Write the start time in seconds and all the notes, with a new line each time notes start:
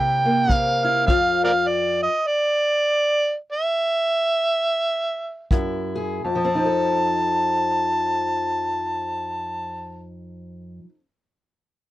Already playing: C3 A#3 E4 A#4 G5
0.25 A#3
0.48 C3, kick
0.52 F5
0.84 E4 F5
1.06 F2 F4 F5, kick
1.44 A#4 D5 F5
1.67 D5
2.03 D#5
2.27 D5
3.52 E5
5.51 F#2 E4, kick
5.96 G#4
6.24 F2 A5
6.35 F3
6.45 C4
6.55 D#4
6.65 A4